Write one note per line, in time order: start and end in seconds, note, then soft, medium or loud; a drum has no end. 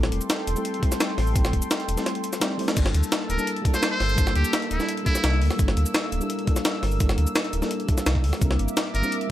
0.00 0.10 A1 loud
0.00 0.53 G3 medium
0.00 0.53 A3 medium
0.00 0.54 C4 medium
0.00 0.55 E4 medium
0.00 0.56 A4 medium
0.00 2.74 A4 medium
0.00 2.74 G5 medium
0.00 2.74 C6 medium
0.00 snare medium
0.12 0.20 E1 medium
0.12 closed hi-hat medium
0.21 cabasa medium
0.30 snare loud
0.30 closed hi-hat loud
0.30 cabasa medium
0.47 0.55 E1 loud
0.47 closed hi-hat medium
0.47 cabasa soft
0.55 0.78 G3 medium
0.55 0.80 A3 medium
0.55 0.81 C4 medium
0.55 0.81 E4 medium
0.55 0.82 A4 medium
0.55 cabasa medium
0.65 closed hi-hat medium
0.74 closed hi-hat soft
0.80 1.31 G3 medium
0.80 1.33 A3 medium
0.80 1.34 C4 medium
0.80 kick loud
0.80 closed hi-hat medium
0.84 1.34 E4 medium
0.84 1.35 A4 loud
0.92 snare soft
0.92 closed hi-hat soft
0.92 cabasa medium
1.00 snare loud
1.00 closed hi-hat medium
1.00 cabasa soft
1.18 1.34 A1 medium
1.18 snare soft
1.18 open hi-hat medium
1.27 cabasa soft
1.32 1.52 A1 loud
1.32 1.94 G3 medium
1.32 1.95 A3 medium
1.32 1.95 C4 medium
1.32 kick loud
1.32 closed hi-hat loud
1.32 cabasa medium
1.37 1.96 E4 medium
1.37 1.97 A4 medium
1.45 snare medium
1.45 cabasa soft
1.53 1.61 E1 medium
1.53 kick medium
1.53 closed hi-hat medium
1.62 cabasa medium
1.71 snare loud
1.71 closed hi-hat loud
1.71 cabasa medium
1.80 closed hi-hat soft
1.88 1.97 E1 loud
1.88 closed hi-hat medium
1.88 cabasa soft
1.96 2.21 G3 medium
1.96 2.22 A3 medium
1.96 2.22 C4 medium
1.96 2.23 E4 medium
1.96 2.23 A4 medium
1.96 snare soft
1.96 cabasa medium
2.06 snare medium
2.06 closed hi-hat medium
2.15 closed hi-hat soft
2.24 closed hi-hat medium
2.24 cabasa soft
2.33 snare soft
2.33 closed hi-hat soft
2.33 cabasa medium
2.40 2.56 G3 medium
2.40 2.57 A3 medium
2.40 2.57 C4 medium
2.40 2.57 E4 medium
2.40 2.58 D5 loud
2.40 snare loud
2.40 closed hi-hat loud
2.40 cabasa soft
2.58 2.73 G3 medium
2.58 2.74 A3 medium
2.58 2.75 C4 medium
2.58 2.75 E4 medium
2.58 2.76 C5 loud
2.58 open hi-hat medium
2.68 snare medium
2.68 cabasa soft
2.74 2.93 G1 loud
2.74 3.35 G3 medium
2.74 3.36 A#3 medium
2.74 9.31 A#3 medium
2.74 3.37 D4 medium
2.74 5.56 A5 medium
2.74 8.38 E6 medium
2.74 kick loud
2.74 closed hi-hat loud
2.74 crash medium
2.74 cabasa soft
2.79 3.37 E4 medium
2.79 3.38 A4 medium
2.86 snare medium
2.94 3.02 D2 medium
2.94 closed hi-hat medium
3.03 cabasa medium
3.12 snare loud
3.12 closed hi-hat medium
3.12 cabasa soft
3.29 3.38 D1 loud
3.29 3.51 A#4 medium
3.29 closed hi-hat medium
3.29 cabasa soft
3.37 3.61 G3 medium
3.37 3.62 A#3 medium
3.37 3.63 D4 medium
3.37 3.64 E4 medium
3.37 3.64 A4 medium
3.37 cabasa soft
3.47 closed hi-hat loud
3.56 closed hi-hat soft
3.62 4.14 G3 medium
3.62 4.15 A#3 medium
3.62 4.16 D4 medium
3.62 kick loud
3.62 closed hi-hat medium
3.67 4.17 E4 medium
3.67 4.18 A4 loud
3.74 3.90 C5 medium
3.74 snare soft
3.74 closed hi-hat soft
3.74 cabasa medium
3.83 snare loud
3.83 closed hi-hat medium
3.83 cabasa soft
3.91 4.34 C5 medium
4.00 4.16 G1 medium
4.00 snare soft
4.00 open hi-hat medium
4.09 cabasa soft
4.15 4.34 G1 loud
4.15 4.76 G3 medium
4.15 4.77 A#3 medium
4.15 4.78 D4 medium
4.15 kick loud
4.15 closed hi-hat loud
4.15 cabasa medium
4.19 4.78 E4 medium
4.19 4.79 A4 medium
4.27 snare medium
4.27 cabasa soft
4.35 4.44 D2 medium
4.35 4.57 G4 loud
4.35 closed hi-hat medium
4.45 cabasa medium
4.53 snare loud
4.53 closed hi-hat medium
4.53 cabasa soft
4.62 closed hi-hat soft
4.71 4.79 D1 loud
4.71 4.92 E4 medium
4.71 closed hi-hat medium
4.71 cabasa soft
4.78 5.02 G3 medium
4.78 5.04 A#3 medium
4.78 5.05 D4 medium
4.78 5.05 E4 medium
4.78 5.05 A4 medium
4.78 snare soft
4.78 cabasa soft
4.89 closed hi-hat medium
4.97 closed hi-hat soft
5.03 5.55 G3 medium
5.03 5.56 A#3 medium
5.03 5.57 D4 medium
5.03 5.41 E4 loud
5.03 kick loud
5.03 closed hi-hat medium
5.03 cabasa soft
5.08 5.58 E4 medium
5.08 5.59 A4 loud
5.15 snare soft
5.15 closed hi-hat soft
5.15 cabasa medium
5.24 5.43 C2 medium
5.24 snare loud
5.24 closed hi-hat medium
5.24 cabasa soft
5.42 5.50 D2 medium
5.42 open hi-hat medium
5.51 snare soft
5.51 cabasa soft
5.56 5.75 G1 loud
5.56 6.18 G3 medium
5.56 6.18 A#3 medium
5.56 6.19 D4 medium
5.56 kick loud
5.56 closed hi-hat medium
5.56 cabasa soft
5.61 6.20 E4 medium
5.61 6.21 A4 medium
5.68 snare medium
5.77 5.85 D2 medium
5.77 closed hi-hat medium
5.86 cabasa medium
5.94 snare loud
5.94 closed hi-hat medium
5.94 cabasa soft
6.12 6.20 D1 loud
6.12 closed hi-hat medium
6.12 cabasa soft
6.20 6.44 G3 medium
6.20 6.45 A#3 medium
6.20 6.46 D4 medium
6.20 6.46 E4 medium
6.20 6.47 A4 medium
6.20 cabasa soft
6.30 closed hi-hat medium
6.39 closed hi-hat soft
6.45 6.96 G3 medium
6.45 6.98 A#3 medium
6.45 6.98 D4 medium
6.45 kick loud
6.45 closed hi-hat medium
6.50 6.99 E4 medium
6.50 7.00 A4 loud
6.56 snare soft
6.56 closed hi-hat soft
6.56 cabasa medium
6.65 snare loud
6.65 closed hi-hat medium
6.65 cabasa soft
6.83 6.99 G1 medium
6.83 snare soft
6.83 open hi-hat medium
6.92 cabasa soft
6.98 7.16 G1 loud
6.98 7.59 G3 medium
6.98 7.59 A#3 medium
6.98 7.60 D4 medium
6.98 kick loud
6.98 closed hi-hat medium
6.98 cabasa soft
7.02 7.61 E4 medium
7.02 7.62 A4 medium
7.09 snare medium
7.09 cabasa soft
7.18 7.26 D2 medium
7.18 closed hi-hat medium
7.27 cabasa medium
7.36 snare loud
7.36 closed hi-hat medium
7.36 cabasa soft
7.44 closed hi-hat soft
7.53 7.61 D1 loud
7.53 closed hi-hat medium
7.53 cabasa soft
7.61 7.84 G3 medium
7.61 7.86 A#3 medium
7.61 7.87 D4 medium
7.61 7.87 E4 medium
7.61 7.88 A4 medium
7.61 snare soft
7.61 cabasa soft
7.71 closed hi-hat medium
7.80 closed hi-hat soft
7.86 8.37 G3 medium
7.86 8.39 A#3 medium
7.86 8.40 D4 medium
7.86 kick loud
7.86 closed hi-hat medium
7.86 cabasa soft
7.90 8.40 E4 medium
7.90 8.41 A4 loud
7.98 snare soft
7.98 closed hi-hat soft
7.98 cabasa medium
8.06 8.25 C2 medium
8.06 snare loud
8.06 closed hi-hat medium
8.06 cabasa soft
8.15 kick medium
8.24 8.32 D2 medium
8.24 open hi-hat medium
8.33 snare soft
8.33 cabasa soft
8.39 8.57 C2 loud
8.39 9.00 G3 medium
8.39 9.01 C4 medium
8.39 9.01 D4 medium
8.39 9.31 E5 medium
8.39 9.31 D6 medium
8.39 kick loud
8.39 closed hi-hat medium
8.39 cabasa soft
8.43 9.02 E4 medium
8.43 9.03 A#4 medium
8.51 snare medium
8.59 8.67 G1 medium
8.59 closed hi-hat medium
8.68 cabasa medium
8.77 snare loud
8.77 closed hi-hat medium
8.77 cabasa soft
8.94 9.02 G1 loud
8.94 9.16 A#4 medium
8.94 closed hi-hat medium
8.94 cabasa soft
9.02 9.26 G3 medium
9.02 9.27 C4 medium
9.02 9.28 D4 medium
9.02 9.29 E4 medium
9.02 9.29 A#4 medium
9.02 cabasa medium
9.12 closed hi-hat medium
9.21 closed hi-hat soft
9.27 9.31 G3 medium